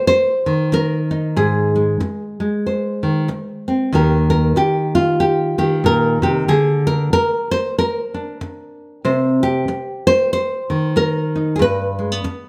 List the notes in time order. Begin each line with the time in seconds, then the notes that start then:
Already playing: G4
0.07 C5
0.46 D#3
0.72 A#4, muted nylon-string guitar stroke
1.11 D#4
1.36 G#2 G#4
1.76 G#3
2.00 muted nylon-string guitar stroke
2.40 G#3
2.66 C5
3.03 D#3
3.28 muted nylon-string guitar stroke
3.68 C4
3.92 D#2 D#3 D#4 G4 A#4
4.30 A#4
4.56 G4, muted nylon-string guitar stroke
4.95 F4
5.20 G4
5.58 D#3 G4
5.84 A#2 A#4
6.22 C3 G4
6.48 D3 G#4
6.87 A#4
7.13 A#4, muted nylon-string guitar stroke
7.51 C5
7.79 A#4
8.14 D4
8.41 muted nylon-string guitar stroke
9.05 C3 C5
9.43 G4
9.68 muted nylon-string guitar stroke
10.07 C5
10.33 C5
10.70 D#3
10.96 A#4, muted nylon-string guitar stroke
11.36 D#4
11.56 G2 G#4
11.62 B4
11.99 G#3
12.12 B3
12.24 muted nylon-string guitar stroke